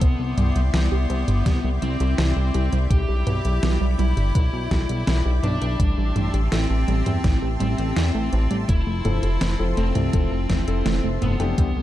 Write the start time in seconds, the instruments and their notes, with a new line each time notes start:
Already playing: lead electric guitar B3, analog synth pad C6
0.01 analog synth bass C2, analog synth pad E4 D5 G5, synth arpeggio sound C5, kick, closed hi-hat
0.19 analog synth bass C2
0.38 analog synth bass C2, synth arpeggio sound G3, closed hi-hat, mid tom
0.56 analog synth bass C2, synth arpeggio sound G3, closed hi-hat
0.74 analog synth bass C2, synth arpeggio sound G3, lead electric guitar B3, snare, closed hi-hat
0.92 analog synth bass C2, synth arpeggio sound G4
1.10 analog synth bass C2, synth arpeggio sound C5, closed hi-hat
1.28 analog synth bass G1, closed hi-hat, mid tom
1.46 analog synth bass C2, synth arpeggio sound G3, kick, snare, closed hi-hat
1.64 analog synth bass C2, synth arpeggio sound G3
1.82 analog synth bass C2, synth arpeggio sound G3, lead electric guitar C4, closed hi-hat
2.00 analog synth bass C2, synth arpeggio sound G4, closed hi-hat
2.18 analog synth bass C2, synth arpeggio sound C5, snare, closed hi-hat
2.36 analog synth bass C2
2.54 analog synth bass C2, synth arpeggio sound G3, closed hi-hat
2.72 analog synth bass C2, synth arpeggio sound G3, closed hi-hat
2.90 analog synth bass B1, synth arpeggio sound G3, lead electric guitar G4, analog synth pad D5 B5, kick, closed hi-hat
3.09 analog synth bass B1, synth arpeggio sound G4
3.27 analog synth bass B1, synth arpeggio sound B4, closed hi-hat, mid tom
3.45 analog synth bass B1, closed hi-hat
3.63 analog synth bass B1, synth arpeggio sound G3, snare, closed hi-hat
3.81 analog synth bass B1, synth arpeggio sound G3
3.99 analog synth bass B1, synth arpeggio sound G3, lead electric guitar E4, closed hi-hat
4.17 analog synth bass G1, synth arpeggio sound G4, closed hi-hat, mid tom
4.35 analog synth bass B1, synth arpeggio sound B4, kick, closed hi-hat
4.53 analog synth bass B1
4.71 analog synth bass B1, synth arpeggio sound G3, kick, snare, closed hi-hat
4.89 analog synth bass B1, synth arpeggio sound G3, closed hi-hat
5.07 analog synth bass B1, synth arpeggio sound G3, snare, closed hi-hat
5.25 analog synth bass B1, synth arpeggio sound G4
5.43 analog synth bass B1, lead electric guitar D4, synth arpeggio sound B4, closed hi-hat, mid tom
5.62 analog synth bass B1, closed hi-hat
5.80 analog synth bass A1, synth arpeggio sound G3, analog synth pad G4 E5 A5 C6, kick, closed hi-hat
5.98 analog synth bass A1, synth arpeggio sound G3
6.16 analog synth bass A1, synth arpeggio sound G3, closed hi-hat, mid tom
6.34 analog synth bass A1, synth arpeggio sound G4, closed hi-hat
6.52 analog synth bass A1, lead electric guitar C4, synth arpeggio sound A4, snare, closed hi-hat
6.70 analog synth bass A1
6.88 analog synth bass A1, synth arpeggio sound G3, closed hi-hat
7.06 analog synth bass E2, synth arpeggio sound G3, closed hi-hat, mid tom
7.24 analog synth bass A1, synth arpeggio sound G3, kick, snare, closed hi-hat
7.42 analog synth bass A1, synth arpeggio sound G4
7.60 analog synth bass A1, synth arpeggio sound G3, lead electric guitar C4, closed hi-hat
7.78 analog synth bass A1, closed hi-hat
7.96 analog synth bass E2, synth arpeggio sound E4, snare, closed hi-hat
8.14 analog synth bass A1, synth arpeggio sound A3
8.33 analog synth bass A1, synth arpeggio sound C4, closed hi-hat
8.51 analog synth bass A1, synth arpeggio sound G3, closed hi-hat
8.69 analog synth bass F1, analog synth pad F3 E5, synth arpeggio sound A3, lead electric guitar E4, kick, closed hi-hat
8.87 analog synth bass F1, synth arpeggio sound A3
9.05 analog synth bass F1, grand piano F3 C4 E4 A4, synth arpeggio sound A3, closed hi-hat, mid tom
9.23 analog synth bass F1, synth arpeggio sound A4, closed hi-hat
9.41 analog synth bass F1, synth arpeggio sound C5, snare, closed hi-hat
9.59 analog synth bass F1, grand piano F3 C4 E4 A4
9.77 analog synth bass F1, synth arpeggio sound A3, lead electric guitar C4, closed hi-hat
9.95 analog synth bass C2, synth arpeggio sound A3, closed hi-hat, mid tom
10.13 analog synth bass F1, grand piano F3 C4 E4 A4, synth arpeggio sound A3, kick, closed hi-hat
10.31 analog synth bass F1, synth arpeggio sound A4
10.50 analog synth bass F1, synth arpeggio sound C5, kick, snare, closed hi-hat
10.68 analog synth bass F1, grand piano F3 C4 E4 A4, closed hi-hat
10.86 analog synth bass F1, synth arpeggio sound A3, snare, closed hi-hat
11.04 analog synth bass F1, synth arpeggio sound A3
11.22 analog synth bass F1, synth arpeggio sound A3, lead electric guitar B3, closed hi-hat, mid tom
11.40 analog synth bass F1, grand piano E3 C4 D4 G4, synth arpeggio sound A4, closed hi-hat
11.58 analog synth bass C2, analog synth pad E4 D5 G5 C6, synth arpeggio sound C5, kick, closed hi-hat
11.76 analog synth bass C2